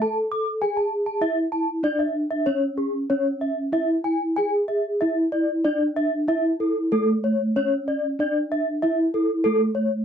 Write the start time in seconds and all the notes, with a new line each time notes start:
0.02 A4 A5
0.32 D6
0.62 G#4 G#5
0.77 A5
1.06 A5
1.21 E4 E5
1.52 A5
1.83 D4 D5
1.99 E5
2.31 E5
2.46 C#4 C#5
2.78 G#4
3.10 C#4 C#5
3.41 E5
3.72 E4 E5
4.04 G#5
4.36 G#4 G#5
4.68 E5
5.01 E4 E5
5.32 D5
5.64 D4 D5
5.96 E5
6.28 E4 E5
6.60 A4
6.92 A3 A4
7.24 C#5
7.56 C#4 C#5
7.88 D5
8.19 D4 D5
8.52 E5
8.82 E4 E5
9.14 A4
9.44 A3 A4
9.75 C#5